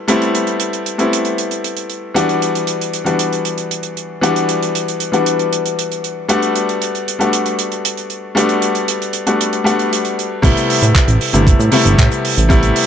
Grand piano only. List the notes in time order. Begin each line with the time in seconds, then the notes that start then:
0.08 G3 A3 B3 C4 E4
0.98 G3 A3 B3 C4 E4
2.14 E3 G3 B3 D4 F#4
3.04 E3 G3 B3 D4 F#4
4.21 E3 G3 B3 D4 F#4
5.12 E3 G3 B3 D4 F#4
6.29 G3 A3 B3 D4 F#4
7.19 G3 A3 B3 D4 F#4
8.35 G3 A3 B3 D4 F#4
9.26 G3 A3 B3 D4 F#4
9.64 G3 A3 B3 D4 F#4
10.42 C3 G3 A3 B3 E4
11.33 C3 G3 A3 B3 E4
11.71 C3 G3 A3 B3 E4
12.49 C3 G3 A3 B3 E4